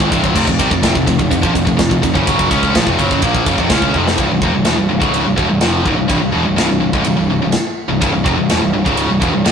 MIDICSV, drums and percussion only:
0, 0, Header, 1, 2, 480
1, 0, Start_track
1, 0, Tempo, 478851
1, 358, Time_signature, 4, 2, 24, 8
1, 9541, End_track
2, 0, Start_track
2, 0, Title_t, "Drums"
2, 2, Note_on_c, 9, 36, 86
2, 102, Note_off_c, 9, 36, 0
2, 120, Note_on_c, 9, 36, 79
2, 128, Note_on_c, 9, 51, 70
2, 220, Note_off_c, 9, 36, 0
2, 228, Note_off_c, 9, 51, 0
2, 238, Note_on_c, 9, 36, 92
2, 339, Note_off_c, 9, 36, 0
2, 357, Note_on_c, 9, 36, 85
2, 360, Note_on_c, 9, 49, 103
2, 457, Note_off_c, 9, 36, 0
2, 461, Note_off_c, 9, 49, 0
2, 476, Note_on_c, 9, 36, 82
2, 577, Note_off_c, 9, 36, 0
2, 595, Note_on_c, 9, 51, 76
2, 596, Note_on_c, 9, 36, 98
2, 695, Note_off_c, 9, 51, 0
2, 696, Note_off_c, 9, 36, 0
2, 715, Note_on_c, 9, 36, 83
2, 815, Note_off_c, 9, 36, 0
2, 834, Note_on_c, 9, 51, 99
2, 835, Note_on_c, 9, 36, 89
2, 840, Note_on_c, 9, 38, 115
2, 935, Note_off_c, 9, 51, 0
2, 936, Note_off_c, 9, 36, 0
2, 940, Note_off_c, 9, 38, 0
2, 956, Note_on_c, 9, 36, 88
2, 1056, Note_off_c, 9, 36, 0
2, 1077, Note_on_c, 9, 36, 69
2, 1079, Note_on_c, 9, 51, 71
2, 1177, Note_off_c, 9, 36, 0
2, 1180, Note_off_c, 9, 51, 0
2, 1196, Note_on_c, 9, 36, 76
2, 1296, Note_off_c, 9, 36, 0
2, 1317, Note_on_c, 9, 36, 84
2, 1326, Note_on_c, 9, 51, 101
2, 1417, Note_off_c, 9, 36, 0
2, 1426, Note_off_c, 9, 51, 0
2, 1436, Note_on_c, 9, 36, 90
2, 1536, Note_off_c, 9, 36, 0
2, 1557, Note_on_c, 9, 36, 86
2, 1565, Note_on_c, 9, 51, 71
2, 1657, Note_off_c, 9, 36, 0
2, 1665, Note_off_c, 9, 51, 0
2, 1674, Note_on_c, 9, 36, 80
2, 1774, Note_off_c, 9, 36, 0
2, 1792, Note_on_c, 9, 51, 100
2, 1795, Note_on_c, 9, 36, 98
2, 1797, Note_on_c, 9, 38, 116
2, 1892, Note_off_c, 9, 51, 0
2, 1895, Note_off_c, 9, 36, 0
2, 1897, Note_off_c, 9, 38, 0
2, 1916, Note_on_c, 9, 36, 83
2, 2017, Note_off_c, 9, 36, 0
2, 2037, Note_on_c, 9, 36, 80
2, 2039, Note_on_c, 9, 51, 77
2, 2137, Note_off_c, 9, 36, 0
2, 2139, Note_off_c, 9, 51, 0
2, 2159, Note_on_c, 9, 36, 94
2, 2259, Note_off_c, 9, 36, 0
2, 2278, Note_on_c, 9, 36, 94
2, 2279, Note_on_c, 9, 51, 105
2, 2378, Note_off_c, 9, 36, 0
2, 2379, Note_off_c, 9, 51, 0
2, 2398, Note_on_c, 9, 36, 86
2, 2498, Note_off_c, 9, 36, 0
2, 2516, Note_on_c, 9, 36, 86
2, 2518, Note_on_c, 9, 51, 80
2, 2616, Note_off_c, 9, 36, 0
2, 2619, Note_off_c, 9, 51, 0
2, 2637, Note_on_c, 9, 36, 81
2, 2737, Note_off_c, 9, 36, 0
2, 2758, Note_on_c, 9, 36, 87
2, 2758, Note_on_c, 9, 51, 107
2, 2763, Note_on_c, 9, 38, 110
2, 2858, Note_off_c, 9, 36, 0
2, 2859, Note_off_c, 9, 51, 0
2, 2864, Note_off_c, 9, 38, 0
2, 2875, Note_on_c, 9, 36, 83
2, 2975, Note_off_c, 9, 36, 0
2, 2995, Note_on_c, 9, 36, 65
2, 2999, Note_on_c, 9, 51, 68
2, 3095, Note_off_c, 9, 36, 0
2, 3099, Note_off_c, 9, 51, 0
2, 3117, Note_on_c, 9, 36, 70
2, 3217, Note_off_c, 9, 36, 0
2, 3227, Note_on_c, 9, 51, 99
2, 3233, Note_on_c, 9, 36, 84
2, 3327, Note_off_c, 9, 51, 0
2, 3334, Note_off_c, 9, 36, 0
2, 3354, Note_on_c, 9, 36, 87
2, 3454, Note_off_c, 9, 36, 0
2, 3471, Note_on_c, 9, 51, 77
2, 3473, Note_on_c, 9, 36, 84
2, 3571, Note_off_c, 9, 51, 0
2, 3573, Note_off_c, 9, 36, 0
2, 3590, Note_on_c, 9, 36, 76
2, 3690, Note_off_c, 9, 36, 0
2, 3705, Note_on_c, 9, 51, 108
2, 3709, Note_on_c, 9, 36, 95
2, 3710, Note_on_c, 9, 38, 122
2, 3806, Note_off_c, 9, 51, 0
2, 3809, Note_off_c, 9, 36, 0
2, 3811, Note_off_c, 9, 38, 0
2, 3829, Note_on_c, 9, 36, 78
2, 3930, Note_off_c, 9, 36, 0
2, 3951, Note_on_c, 9, 36, 61
2, 4051, Note_off_c, 9, 36, 0
2, 4083, Note_on_c, 9, 38, 85
2, 4183, Note_off_c, 9, 38, 0
2, 4187, Note_on_c, 9, 53, 63
2, 4192, Note_on_c, 9, 36, 110
2, 4287, Note_off_c, 9, 53, 0
2, 4293, Note_off_c, 9, 36, 0
2, 4429, Note_on_c, 9, 36, 96
2, 4529, Note_off_c, 9, 36, 0
2, 4659, Note_on_c, 9, 53, 59
2, 4664, Note_on_c, 9, 38, 104
2, 4759, Note_off_c, 9, 53, 0
2, 4764, Note_off_c, 9, 38, 0
2, 5029, Note_on_c, 9, 36, 96
2, 5129, Note_off_c, 9, 36, 0
2, 5150, Note_on_c, 9, 53, 61
2, 5250, Note_off_c, 9, 53, 0
2, 5390, Note_on_c, 9, 36, 91
2, 5490, Note_off_c, 9, 36, 0
2, 5621, Note_on_c, 9, 53, 65
2, 5626, Note_on_c, 9, 38, 111
2, 5721, Note_off_c, 9, 53, 0
2, 5726, Note_off_c, 9, 38, 0
2, 5871, Note_on_c, 9, 36, 85
2, 5971, Note_off_c, 9, 36, 0
2, 6109, Note_on_c, 9, 53, 67
2, 6111, Note_on_c, 9, 36, 107
2, 6209, Note_off_c, 9, 53, 0
2, 6211, Note_off_c, 9, 36, 0
2, 6596, Note_on_c, 9, 53, 74
2, 6602, Note_on_c, 9, 38, 96
2, 6697, Note_off_c, 9, 53, 0
2, 6702, Note_off_c, 9, 38, 0
2, 6950, Note_on_c, 9, 36, 97
2, 7051, Note_off_c, 9, 36, 0
2, 7061, Note_on_c, 9, 53, 73
2, 7161, Note_off_c, 9, 53, 0
2, 7540, Note_on_c, 9, 53, 70
2, 7545, Note_on_c, 9, 38, 99
2, 7640, Note_off_c, 9, 53, 0
2, 7645, Note_off_c, 9, 38, 0
2, 8036, Note_on_c, 9, 53, 64
2, 8037, Note_on_c, 9, 36, 106
2, 8136, Note_off_c, 9, 53, 0
2, 8137, Note_off_c, 9, 36, 0
2, 8279, Note_on_c, 9, 36, 101
2, 8379, Note_off_c, 9, 36, 0
2, 8516, Note_on_c, 9, 53, 64
2, 8521, Note_on_c, 9, 38, 96
2, 8616, Note_off_c, 9, 53, 0
2, 8621, Note_off_c, 9, 38, 0
2, 8882, Note_on_c, 9, 36, 89
2, 8982, Note_off_c, 9, 36, 0
2, 8994, Note_on_c, 9, 53, 67
2, 9094, Note_off_c, 9, 53, 0
2, 9241, Note_on_c, 9, 36, 108
2, 9341, Note_off_c, 9, 36, 0
2, 9479, Note_on_c, 9, 53, 68
2, 9484, Note_on_c, 9, 38, 105
2, 9541, Note_off_c, 9, 38, 0
2, 9541, Note_off_c, 9, 53, 0
2, 9541, End_track
0, 0, End_of_file